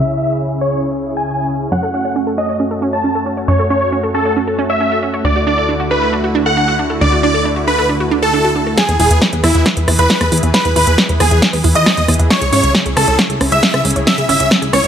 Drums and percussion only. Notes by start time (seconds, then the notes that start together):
8.78 kick, snare, closed hi-hat
8.89 closed hi-hat
9.00 open hi-hat
9.11 closed hi-hat
9.22 kick, snare, closed hi-hat
9.33 closed hi-hat
9.44 cross-stick, open hi-hat
9.55 closed hi-hat
9.66 kick, snare, closed hi-hat
9.77 closed hi-hat
9.88 cross-stick, open hi-hat
9.99 closed hi-hat
10.10 kick, snare, closed hi-hat
10.21 cross-stick, closed hi-hat
10.32 open hi-hat
10.37 closed hi-hat
10.43 closed hi-hat
10.54 kick, snare, closed hi-hat
10.65 closed hi-hat
10.76 open hi-hat
10.87 closed hi-hat
10.98 kick, snare, closed hi-hat
11.09 closed hi-hat
11.20 cross-stick, open hi-hat
11.31 closed hi-hat
11.42 kick, snare, closed hi-hat
11.53 open hi-hat
11.64 open hi-hat
11.75 closed hi-hat
11.86 kick, cross-stick, snare, closed hi-hat
11.97 closed hi-hat
12.08 cross-stick, open hi-hat
12.14 closed hi-hat
12.19 closed hi-hat
12.30 kick, snare, closed hi-hat
12.42 closed hi-hat
12.53 open hi-hat
12.64 closed hi-hat
12.75 kick, snare, closed hi-hat
12.86 closed hi-hat
12.97 cross-stick, open hi-hat
13.08 closed hi-hat
13.19 kick, snare, closed hi-hat
13.30 closed hi-hat
13.41 cross-stick, open hi-hat
13.52 closed hi-hat
13.63 kick, snare, closed hi-hat
13.74 cross-stick, closed hi-hat
13.85 open hi-hat
13.90 closed hi-hat
13.96 closed hi-hat
14.07 kick, snare, closed hi-hat
14.18 closed hi-hat
14.29 open hi-hat
14.40 closed hi-hat
14.51 kick, snare, closed hi-hat
14.62 closed hi-hat
14.73 cross-stick, open hi-hat
14.84 closed hi-hat